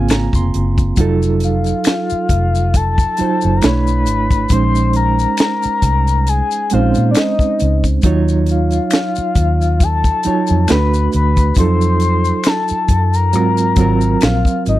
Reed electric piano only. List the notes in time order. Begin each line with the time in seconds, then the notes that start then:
Already playing: C#3 A#3 C4 F4 F5 G#5
0.11 A#5
0.35 C6
0.98 F#3 D#4 F4 A4
3.18 F#3 D#4 F4 C5
3.62 A3 D4 E4 C#5
4.51 G#3 C#4 D#4 C5
6.71 G#3 C4 D#4 C5
6.79 C#4
8.04 F#3 D#4 F4 C#5
10.25 F#3 D#4 F4 C#5
10.68 A3 D4 F#4 B4
11.57 F#3 D#4 F4 A4
13.33 F#3 C4 F4 A#4
13.77 F#3 C4 F4 A#4